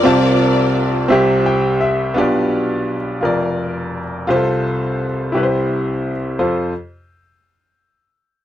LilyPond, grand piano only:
<<
  \new Staff \with { instrumentName = "Grand piano" } { \time 6/8 \key f \major \tempo 4. = 57 << { r2 g''8 e''8 | r2. | r2. | r2. | } \\ { <c' f' a''>4 r8 <c' g' e''>4 r8 | <b d' f' g' d''>4 r8 <f' bes' d''>4 r8 | <f' g' a' c''>4 r8 <e' g' b' c''>4 r8 | <f' a' c''>8 r2 r8 | } >> }
  \new Staff \with { instrumentName = "Grand piano" } { \clef bass \time 6/8 \key f \major <c, c>4. <c, c>4. | <b,, b,>4. <f,, f,>4. | <c, c>4. <c, c>4. | f,8 r2 r8 | }
>>